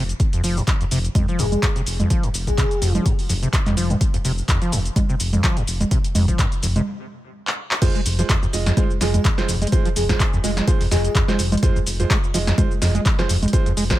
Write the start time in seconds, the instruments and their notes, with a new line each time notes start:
Already playing: analog synth bass F1
0.09 closed hi-hat, shaker
0.20 kick, closed hi-hat, shaker
0.33 acid bass F2, closed hi-hat, shaker
0.43 analog synth bass F1, acid bass F3, open hi-hat, shaker
0.57 acid bass F2, shaker
0.67 kick, clap, closed hi-hat, shaker
0.81 acid bass F2, closed hi-hat, shaker
0.91 analog synth bass F1, acid bass C3, open hi-hat, shaker
1.05 closed hi-hat, shaker
1.15 acid bass F2, kick, closed hi-hat, low conga, shaker
1.28 acid bass F3, shaker
1.39 analog synth bass F1, acid bass F2, digital synth lead G#4, open hi-hat, shaker
1.52 digital synth lead G#4, closed hi-hat, low conga, shaker
1.63 acid bass F2, kick, clap, closed hi-hat, shaker
1.76 acid bass C3, closed hi-hat, shaker
1.86 analog synth bass F1, open hi-hat, shaker
2.00 acid bass F2, closed hi-hat, low conga, shaker
2.10 acid bass F3, kick, closed hi-hat, shaker
2.23 acid bass F2, closed hi-hat, shaker
2.34 analog synth bass F1, open hi-hat, shaker
2.47 acid bass F2, digital synth lead G#4, kick, closed hi-hat, shaker
2.58 acid bass C3, kick, clap, closed hi-hat, shaker
2.71 closed hi-hat, shaker
2.82 analog synth bass F1, acid bass F2, open hi-hat, shaker
2.95 acid bass F3, closed hi-hat, low conga, shaker
3.06 acid bass F2, kick, closed hi-hat, shaker
3.19 open hi-hat, shaker
3.29 analog synth bass F1, acid bass F2, open hi-hat, shaker
3.43 acid bass C3, closed hi-hat, shaker
3.53 kick, clap, closed hi-hat, shaker
3.66 acid bass F2, clap, closed hi-hat, low conga, shaker
3.77 analog synth bass F1, acid bass F3, open hi-hat, shaker
3.90 acid bass F2, closed hi-hat, low conga, shaker
4.01 kick, closed hi-hat, shaker
4.14 acid bass F2, closed hi-hat, shaker
4.25 analog synth bass F1, acid bass C3, open hi-hat, shaker
4.38 shaker
4.48 acid bass F2, kick, clap, closed hi-hat, shaker
4.62 acid bass F3, closed hi-hat, shaker
4.72 analog synth bass F1, acid bass F2, open hi-hat, shaker
4.86 closed hi-hat, shaker
4.96 acid bass F2, kick, closed hi-hat, low conga, shaker
5.09 acid bass C3, shaker
5.20 analog synth bass F1, open hi-hat, shaker
5.33 acid bass F2, closed hi-hat, low conga, shaker
5.44 acid bass F3, kick, clap, closed hi-hat, shaker
5.57 acid bass F2, closed hi-hat, shaker
5.67 analog synth bass F1, open hi-hat, shaker
5.81 acid bass F2, closed hi-hat, low conga, shaker
5.91 acid bass C3, kick, closed hi-hat, shaker
6.04 closed hi-hat, shaker
6.15 analog synth bass F1, acid bass F2, open hi-hat, low conga, shaker
6.28 acid bass F3, kick, closed hi-hat, shaker
6.39 acid bass F2, kick, clap, closed hi-hat, shaker
6.52 closed hi-hat, shaker
6.63 analog synth bass F1, acid bass F2, open hi-hat, shaker
6.76 acid bass C3, closed hi-hat, low conga, shaker
7.47 clap
7.71 clap
7.82 acid bass F2, grand piano G#3 F4 C5, kick, closed hi-hat, crash, shaker
7.95 acid bass G#3, shaker
8.06 analog synth bass F1, open hi-hat, shaker
8.19 acid bass F3, grand piano G#3 F4 C5, closed hi-hat, shaker
8.29 acid bass F2, kick, clap, closed hi-hat, shaker
8.43 acid bass F2, shaker
8.53 analog synth bass F1, grand piano G#3 F4 D#5, open hi-hat, shaker
8.66 acid bass F2, snare, closed hi-hat, shaker
8.77 grand piano G#3 F4 C5, acid bass G#3, kick, closed hi-hat, low conga, shaker
8.91 shaker
9.01 analog synth bass F1, acid bass F3, grand piano G#3 F4 D#5, digital synth lead G#4, snare, open hi-hat, shaker
9.14 acid bass F2, digital synth lead G#4, closed hi-hat, low conga, shaker
9.25 acid bass F2, kick, clap, closed hi-hat, shaker
9.38 grand piano G#3 F4 C5, snare, shaker
9.48 analog synth bass F1, acid bass F2, open hi-hat, shaker
9.62 acid bass G#3, closed hi-hat, low conga, shaker
9.67 closed hi-hat
9.72 grand piano G#3 F4 C5, kick, closed hi-hat, shaker
9.85 acid bass F3, closed hi-hat, shaker
9.96 analog synth bass F1, acid bass F2, digital synth lead G#4, open hi-hat, shaker
10.09 acid bass F2, grand piano G#3 F4 C5, digital synth lead G#4, kick, snare, closed hi-hat, shaker
10.20 kick, clap, closed hi-hat, shaker
10.33 acid bass F2, shaker
10.44 analog synth bass F1, grand piano G#3 F4 D#5, acid bass G#3, open hi-hat, shaker
10.57 snare, closed hi-hat, low conga, shaker
10.67 acid bass F3, grand piano G#3 F4 C5, kick, closed hi-hat, shaker
10.81 acid bass F2, open hi-hat, shaker
10.91 analog synth bass F1, acid bass F2, grand piano G#3 F4 D#5, digital synth lead G#4, snare, open hi-hat, shaker
11.04 digital synth lead G#4, closed hi-hat, shaker
11.15 acid bass F2, kick, clap, closed hi-hat, shaker
11.28 acid bass G#3, grand piano G#3 F4 C5, snare, low conga, shaker
11.39 analog synth bass F1, open hi-hat, shaker
11.52 acid bass F3, closed hi-hat, low conga, shaker
11.57 closed hi-hat
11.63 acid bass F2, grand piano G#3 F4 C5, kick, closed hi-hat, shaker
11.76 acid bass F2, shaker
11.86 analog synth bass F1, open hi-hat, shaker
12.00 acid bass F2, grand piano G#3 F4 C5, closed hi-hat, shaker
12.10 acid bass G#3, kick, clap, closed hi-hat, shaker
12.24 shaker
12.34 analog synth bass F1, acid bass F3, grand piano G#3 F4 D#5, open hi-hat, shaker
12.47 acid bass F2, snare, closed hi-hat, shaker
12.58 acid bass F2, grand piano G#3 F4 C5, kick, closed hi-hat, low conga, shaker
12.71 shaker
12.82 analog synth bass F1, acid bass F2, grand piano G#3 F4 D#5, snare, open hi-hat, shaker
12.95 acid bass G#3, closed hi-hat, low conga, shaker
13.06 kick, clap, closed hi-hat, shaker
13.19 acid bass F3, grand piano G#3 F4 C5, snare, shaker
13.29 analog synth bass F1, acid bass F2, open hi-hat, shaker
13.43 acid bass F2, closed hi-hat, low conga, shaker
13.48 closed hi-hat
13.53 grand piano G#3 F4 C5, kick, closed hi-hat, shaker
13.66 acid bass F2, closed hi-hat, shaker
13.77 analog synth bass F1, acid bass G#3, open hi-hat, shaker
13.90 grand piano G#3 F4 C5, kick, snare, closed hi-hat, shaker